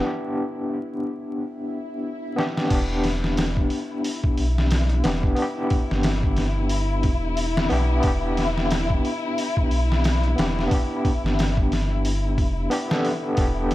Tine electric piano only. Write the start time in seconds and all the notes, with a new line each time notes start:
Already playing: D4 G4
0.00 B3 D4
0.07 G4
2.36 B3 D4 G4
2.68 B3 D4
2.74 G4
5.04 B3 D4 G4
5.35 B3 D4
5.42 G4
7.69 B3 D4 G4
8.00 B3 D4
8.07 G4
10.36 B3 D4 G4
10.68 B3 D4
10.74 G4
12.70 B3 D4 G4
12.88 B3 D4 A4
13.34 B3 D4
13.41 G4